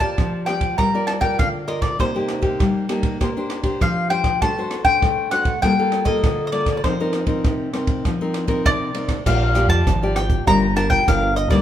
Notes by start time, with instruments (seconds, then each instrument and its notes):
Already playing: nylon-string guitar A#3
0.00 nylon-string guitar F4 G4 D5, mandolin A5, kick, ride
0.18 nylon-string guitar F3, kick, cross-stick, ride
0.46 nylon-string guitar F4 G4 D5, mandolin G5, cross-stick, ride
0.61 kick, ride
0.78 nylon-string guitar G3 F4 A#4 D5, mandolin A#5, kick, cross-stick, ride
0.94 nylon-string guitar F4 A#4 D5
1.07 mandolin A5, cross-stick, ride
1.21 nylon-string guitar F4 A#4 D5, mandolin G5, kick, ride
1.39 nylon-string guitar D3, mandolin F5, kick, cross-stick, ride
1.67 nylon-string guitar F4 A#4 D5, mandolin D#5, ride
1.82 mandolin D5, kick, cross-stick, ride
1.99 nylon-string guitar C3 A#3 D#4 G4, mandolin C5, kick, cross-stick, ride
2.15 nylon-string guitar A#3 D#4 G4
2.28 cross-stick, ride
2.42 nylon-string guitar A#3 D#4 G4, kick, ride
2.59 nylon-string guitar G3, kick, cross-stick, ride
2.89 nylon-string guitar A#3 D#4 G4, cross-stick, ride
3.03 kick, ride
3.20 nylon-string guitar A#3 D4 G4 C5, kick, cross-stick, ride
3.37 nylon-string guitar D4 G4 C5
3.50 cross-stick, ride
3.63 nylon-string guitar D4 G4 C5, kick, ride
3.81 nylon-string guitar F3, mandolin F5, kick, cross-stick, ride
4.10 nylon-string guitar D4 G4 C5, mandolin G5, ride
4.24 kick, cross-stick, ride
4.42 nylon-string guitar A3 D4 F#4 C5, mandolin A5, kick, cross-stick, ride
4.58 nylon-string guitar D4 F#4 C5
4.71 cross-stick, ride
4.85 nylon-string guitar D4 C5, mandolin G5, kick, ride
5.02 nylon-string guitar A3, kick, cross-stick, ride
5.31 nylon-string guitar D4 F#4 C5, mandolin F#5, cross-stick, ride
5.45 kick, ride
5.62 nylon-string guitar G3 A#3 F4 A4, mandolin G5, kick, cross-stick, ride
5.79 nylon-string guitar A#3 F4 A4
5.92 cross-stick, ride
6.05 nylon-string guitar A#3 F4 A4, mandolin D#5, kick, ride
6.23 nylon-string guitar D3, kick, cross-stick, ride
6.47 mandolin D#5
6.52 nylon-string guitar A#3 F4 A4, mandolin D5, ride
6.66 kick, cross-stick, ride
6.77 mandolin D5
6.84 nylon-string guitar F3 C4 D#4 A#4, mandolin C5, kick, cross-stick, ride
7.00 nylon-string guitar C4 D#4 A#4
7.13 cross-stick, ride
7.26 nylon-string guitar C4 D#4 A#4, kick, ride
7.44 nylon-string guitar C3, kick, cross-stick, ride
7.73 nylon-string guitar C4 D#4 A#4, cross-stick, ride
7.87 kick, ride
8.05 nylon-string guitar F3, kick, cross-stick, ride
8.21 nylon-string guitar C4 D#4 A#4
8.34 cross-stick, ride
8.48 nylon-string guitar C4 D#4 A#4, kick, ride
8.65 nylon-string guitar C3, mandolin D5, kick, cross-stick, ride
8.94 nylon-string guitar C4 D#4 A#4, ride
9.08 kick, cross-stick, ride
9.26 fingered electric bass A#1, nylon-string guitar A#3 F4 G4 D5, mandolin F5, kick, cross-stick, crash
9.55 nylon-string guitar F4 G4 D5, cross-stick, closed hi-hat
9.67 fingered electric bass F2, mandolin A5, kick
9.87 fingered electric bass G#1, nylon-string guitar F3, kick, cross-stick, closed hi-hat
10.02 nylon-string guitar F4 G4 D5
10.16 mandolin G5, cross-stick, closed hi-hat
10.30 kick, closed hi-hat
10.47 fingered electric bass G1, nylon-string guitar G3 D4 F4 A#4, mandolin A#5, kick, cross-stick, closed hi-hat
10.76 nylon-string guitar D4 F4 A#4, mandolin A5, cross-stick, closed hi-hat
10.90 mandolin G5, kick
11.07 fingered electric bass G1, nylon-string guitar D3 D4 F4 A#4, mandolin F5, kick, cross-stick, closed hi-hat
11.36 mandolin D#5, closed hi-hat
11.48 fingered electric bass D2, nylon-string guitar G3 A#3 D#4, mandolin D5, kick, cross-stick, closed hi-hat